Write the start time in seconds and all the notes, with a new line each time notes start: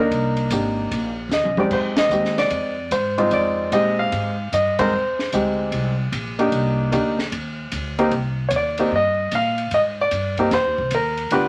0.00 A#3 D4 D#4 A#4
0.11 C2, kick, ride
0.37 ride
0.50 G#1 A#3 D4 D#4 G4, kick, hi-hat pedal, ride
0.91 A#1, kick, ride
1.29 D#2, snare, hi-hat pedal
1.33 D#5
1.43 C2, high tom
1.55 A#1 G#3 C4 D#4, high tom
1.59 G4 D5
1.71 F2 C5, kick, crash
1.96 D#5, snare, ride
2.09 D#2 G#3 C4 D#4 G4, hi-hat pedal
2.25 snare
2.38 D5, snare, ride
2.50 F2, kick, ride
2.91 G#2 C5, kick, hi-hat pedal, ride
3.18 G#3 C4 D#4 F4, ride
3.31 F2 D5, kick, ride
3.72 A#2 G#3 C4 D#4 G4 D#5, kick, hi-hat pedal, ride
3.99 F5
4.12 G#2, kick, ride
4.52 G2 D#5, kick, hi-hat pedal, ride
4.79 G#3 C4 D#4 A#4 C5, kick, ride
4.93 F2
5.19 snare
5.32 D2 G#3 C4 D#4 G4, kick, hi-hat pedal, ride
5.72 C2, kick, ride
6.12 A#1, kick, hi-hat pedal, ride
6.39 A#3 D4 D#4 G4, ride
6.52 C2, kick, ride
6.92 D2 A#3 D4 D#4 G4, kick, hi-hat pedal, ride
7.19 snare
7.32 D#2, kick, ride
7.72 D2, kick, hi-hat pedal, ride
7.99 A#3 C4 D#4 G4, ride
8.11 C2, kick, ride
8.49 D#2 C#5, kick, hi-hat pedal, ride
8.56 D5
8.78 A#3 C4 D#4 G4, ride
8.91 G2, kick
8.96 D#5
9.31 A#2 F5, kick, hi-hat pedal, ride
9.58 ride
9.71 G#2 D#5, kick, ride
10.01 D5
10.11 G2, kick, hi-hat pedal, ride
10.37 A#3 C4 D#4 G4, kick, ride
10.51 F2 C5, kick, snare, ride
10.65 D#2
10.78 C2, kick
10.91 D#2 A#4, kick, hi-hat pedal, ride
11.17 ride
11.31 D2 B3 D4 F4 G4 B4, kick, ride